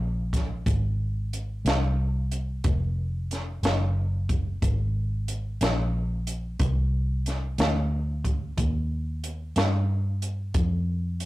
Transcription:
0.00 0.63 A#1 medium
0.33 kick medium
0.33 snare soft
0.33 closed hi-hat medium
0.66 1.62 G#1 medium
0.66 kick medium
0.66 closed hi-hat medium
1.33 closed hi-hat soft
1.65 2.61 C2 medium
1.65 snare loud
1.65 closed hi-hat medium
2.32 closed hi-hat medium
2.64 3.60 F1 medium
2.64 kick loud
2.64 closed hi-hat medium
3.31 snare soft
3.31 closed hi-hat medium
3.63 4.59 F#1 medium
3.63 snare medium
3.63 closed hi-hat medium
4.29 kick medium
4.29 closed hi-hat medium
4.62 5.58 G#1 medium
4.62 kick medium
4.62 closed hi-hat medium
5.28 closed hi-hat medium
5.61 6.57 A#1 medium
5.61 snare loud
5.61 closed hi-hat medium
6.27 closed hi-hat medium
6.60 7.56 C2 medium
6.60 kick loud
6.60 closed hi-hat medium
7.26 snare soft
7.26 closed hi-hat medium
7.58 8.54 D2 medium
7.58 snare loud
7.58 closed hi-hat medium
8.25 kick medium
8.25 closed hi-hat medium
8.57 9.53 D#2 medium
8.57 kick medium
8.57 closed hi-hat medium
9.24 closed hi-hat medium
9.56 10.52 G2 medium
9.56 snare loud
9.56 closed hi-hat medium
10.22 closed hi-hat medium
10.54 11.26 F2 medium
10.54 kick loud
10.54 closed hi-hat medium
11.20 closed hi-hat medium

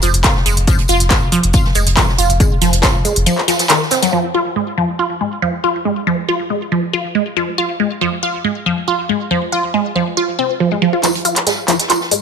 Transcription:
0.02 0.13 F1 loud
0.02 0.10 F3 loud
0.02 open hi-hat loud
0.02 tambourine medium
0.14 0.24 F1 medium
0.14 closed hi-hat medium
0.24 0.35 F4 loud
0.24 kick loud
0.24 snare loud
0.24 clap loud
0.24 closed hi-hat medium
0.24 tambourine medium
0.36 snare medium
0.46 0.56 F1 loud
0.46 0.50 G#3 medium
0.46 open hi-hat loud
0.46 tambourine medium
0.57 0.67 F1 medium
0.57 closed hi-hat medium
0.67 0.74 F3 loud
0.67 kick loud
0.67 closed hi-hat medium
0.67 tambourine medium
0.78 closed hi-hat soft
0.88 1.00 F1 loud
0.88 0.99 F4 loud
0.88 open hi-hat loud
0.88 tambourine medium
1.00 1.10 F1 medium
1.00 closed hi-hat medium
1.10 1.15 G#3 medium
1.10 kick loud
1.10 snare loud
1.10 clap loud
1.10 closed hi-hat medium
1.10 tambourine medium
1.22 1.32 F1 medium
1.32 1.39 F3 loud
1.32 open hi-hat loud
1.43 1.54 F1 medium
1.43 closed hi-hat medium
1.53 1.64 F4 loud
1.53 kick loud
1.53 closed hi-hat medium
1.53 tambourine medium
1.65 snare soft
1.75 1.86 F1 loud
1.75 1.79 G#3 medium
1.75 open hi-hat loud
1.75 tambourine medium
1.87 1.97 F1 medium
1.87 closed hi-hat medium
1.87 closed hi-hat soft
1.97 2.04 F3 loud
1.97 kick loud
1.97 snare loud
1.97 clap loud
1.97 closed hi-hat medium
1.97 tambourine medium
2.09 snare medium
2.18 2.29 F1 loud
2.18 2.29 F4 loud
2.18 open hi-hat loud
2.18 tambourine medium
2.30 2.40 F1 medium
2.30 closed hi-hat medium
2.40 2.44 G#3 medium
2.40 kick loud
2.40 closed hi-hat medium
2.40 tambourine loud
2.61 2.72 F1 loud
2.61 2.68 F3 loud
2.61 snare soft
2.61 open hi-hat loud
2.61 tambourine medium
2.73 2.83 F1 medium
2.73 closed hi-hat soft
2.73 closed hi-hat medium
2.83 2.94 F4 loud
2.83 kick loud
2.83 snare loud
2.83 clap loud
2.83 closed hi-hat medium
2.83 tambourine medium
2.94 3.05 F1 medium
3.05 3.09 G#3 medium
3.05 open hi-hat loud
3.05 tambourine medium
3.16 3.26 F1 medium
3.16 closed hi-hat medium
3.26 3.33 F3 loud
3.26 closed hi-hat medium
3.26 tambourine medium
3.38 clap soft
3.48 3.52 F3 loud
3.48 snare loud
3.48 open hi-hat loud
3.48 tambourine medium
3.59 snare loud
3.59 closed hi-hat medium
3.59 tambourine medium
3.69 3.80 D#3 medium
3.69 snare loud
3.69 clap loud
3.69 closed hi-hat medium
3.69 tambourine medium
3.82 snare medium
3.91 3.98 C4 medium
3.91 snare loud
3.91 open hi-hat loud
3.91 tambourine medium
4.02 4.12 F#3 loud
4.02 snare loud
4.02 closed hi-hat medium
4.02 tambourine medium
4.13 4.20 F3 loud
4.34 4.45 F4 loud
4.56 4.60 G#3 medium
4.78 4.84 F3 loud
4.99 5.09 F4 loud
5.21 5.25 G#3 medium
5.42 5.49 F3 loud
5.64 5.74 F4 loud
5.85 5.89 G#3 medium
6.07 6.14 F3 loud
6.28 6.39 F4 loud
6.50 6.54 G#3 medium
6.72 6.79 F3 loud
6.93 7.04 F4 loud
7.15 7.19 G#3 medium
7.37 7.43 F3 loud
7.58 7.68 F4 loud
7.80 7.84 G#3 medium
8.01 8.08 F3 loud
8.23 8.33 F4 loud
8.44 8.49 G#3 medium
8.66 8.73 F3 loud
8.88 8.98 F4 loud
9.09 9.13 G#3 medium
9.31 9.38 F3 loud
9.52 9.63 F4 loud
9.74 9.78 G#3 medium
9.96 10.02 F3 loud
10.17 10.27 F4 loud
10.39 10.49 C4 loud
10.60 10.67 F3 medium
10.72 10.75 G#3 medium
10.82 10.86 F3 loud
10.93 10.97 F4 medium
11.03 11.10 F3 loud
11.03 clap soft
11.03 closed hi-hat medium
11.03 tambourine medium
11.15 closed hi-hat soft
11.25 11.35 F4 loud
11.25 open hi-hat loud
11.25 tambourine medium
11.36 clap soft
11.36 closed hi-hat medium
11.47 11.51 G#3 medium
11.47 snare loud
11.47 closed hi-hat medium
11.47 tambourine medium
11.68 11.75 F3 medium
11.68 clap soft
11.68 open hi-hat loud
11.68 tambourine medium
11.79 snare soft
11.79 closed hi-hat medium
11.90 12.00 F4 medium
11.90 clap medium
11.90 closed hi-hat medium
11.90 tambourine medium
12.01 snare soft
12.11 12.15 G#3 medium
12.11 open hi-hat loud
12.11 tambourine medium

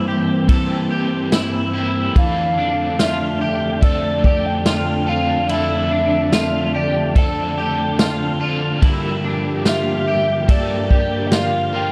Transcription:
0.00 0.48 G2 medium
0.00 2.12 G2 medium
0.00 0.49 E3 medium
0.00 2.13 E3 medium
0.00 0.47 A#3 medium
0.00 2.12 A#3 medium
0.00 0.49 C4 medium
0.00 2.13 C4 medium
0.00 0.49 E4 medium
0.00 0.50 G4 medium
0.08 0.49 G4 medium
0.48 1.74 A#3 medium
0.48 1.75 C4 medium
0.48 1.73 E4 medium
0.48 1.72 G4 medium
0.48 0.90 A4 medium
0.48 kick loud
0.48 ride medium
0.91 1.32 G4 medium
1.32 1.73 E4 medium
1.32 snare loud
1.32 ride medium
1.32 tambourine medium
1.74 2.16 A#3 medium
1.74 2.17 C4 medium
1.74 2.16 E4 medium
1.74 2.16 G4 medium
2.15 8.78 F2 medium
2.15 11.92 D3 medium
2.15 2.58 E3 medium
2.15 5.47 F3 medium
2.15 8.79 A3 medium
2.15 3.80 A3 medium
2.15 3.81 C4 medium
2.15 8.78 D4 medium
2.15 3.83 D4 medium
2.15 3.02 F5 loud
2.15 kick loud
2.15 ride medium
2.20 3.84 A4 medium
2.58 2.99 D4 medium
2.99 3.41 F4 medium
2.99 3.85 E5 medium
2.99 snare loud
2.99 ride medium
2.99 tambourine medium
3.41 3.82 G4 medium
3.81 5.07 A3 medium
3.81 5.08 C4 medium
3.81 5.08 D4 medium
3.81 4.24 A4 medium
3.81 5.05 A4 medium
3.81 4.48 D5 medium
3.81 kick medium
3.81 ride medium
4.24 4.66 G4 medium
4.24 kick medium
4.46 5.11 G5 medium
4.66 5.07 F4 medium
4.66 snare loud
4.66 ride medium
4.66 tambourine medium
5.07 5.49 C4 soft
5.07 5.50 D4 medium
5.07 5.49 F4 medium
5.07 5.49 A4 medium
5.07 5.50 F5 medium
5.48 8.82 F3 medium
5.48 7.14 A3 medium
5.48 7.15 C4 medium
5.48 7.17 D4 medium
5.48 5.91 E4 medium
5.48 6.78 E5 loud
5.48 ride medium
5.53 7.17 A4 medium
5.91 6.33 D4 medium
6.33 6.74 F4 medium
6.33 snare loud
6.33 ride medium
6.33 tambourine medium
6.74 7.16 G4 medium
6.74 7.20 D5 loud
7.16 8.41 A3 medium
7.16 8.41 C4 medium
7.16 8.41 D4 medium
7.16 7.57 A4 medium
7.16 8.39 A4 medium
7.16 8.42 A5 loud
7.16 kick loud
7.16 ride medium
7.58 7.99 G4 medium
7.99 8.39 F4 medium
7.99 snare loud
7.99 ride medium
7.99 tambourine medium
8.40 8.83 C4 medium
8.40 8.83 D4 medium
8.40 8.82 F4 medium
8.40 8.82 A4 medium
8.81 10.48 G2 medium
8.81 11.92 G2 medium
8.81 10.49 D3 medium
8.81 10.47 F3 loud
8.81 11.92 A#3 medium
8.81 10.49 A#3 loud
8.81 9.24 E4 medium
8.81 11.92 G4 medium
8.81 kick loud
8.81 ride medium
8.85 10.49 D4 medium
8.85 10.51 A#4 medium
9.24 9.66 D4 medium
9.65 10.07 F4 medium
9.65 10.52 E5 loud
9.65 snare loud
9.65 ride medium
9.65 tambourine medium
10.08 10.49 G4 medium
10.48 11.74 F3 medium
10.48 11.75 A#3 medium
10.48 11.73 D4 medium
10.48 10.90 A4 medium
10.48 11.73 A#4 medium
10.48 11.28 D5 medium
10.48 kick loud
10.48 ride medium
10.91 11.32 G4 medium
10.91 kick medium
11.27 11.35 G5 medium
11.32 11.73 F4 medium
11.32 11.77 F5 loud
11.32 snare loud
11.32 ride medium
11.32 tambourine medium
11.73 11.92 F3 soft
11.73 11.92 A#3 soft
11.73 11.92 D4 medium
11.73 11.92 F4 medium
11.73 11.92 A#4 medium
11.73 11.92 G5 loud

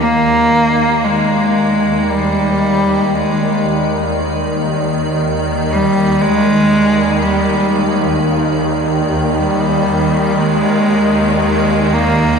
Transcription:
0.00 12.39 D#2 medium
0.00 12.39 D#3 medium
0.00 1.06 A#3 loud
0.00 12.39 D5 medium
1.05 2.12 G#3 medium
2.11 3.17 G3 medium
3.15 3.92 G#3 medium
5.71 6.23 G3 medium
6.22 7.24 G#3 loud
7.22 8.02 G3 medium
9.36 10.41 G3 medium
10.40 11.42 G#3 loud
11.42 11.96 G#3 medium
11.94 12.39 A#3 medium

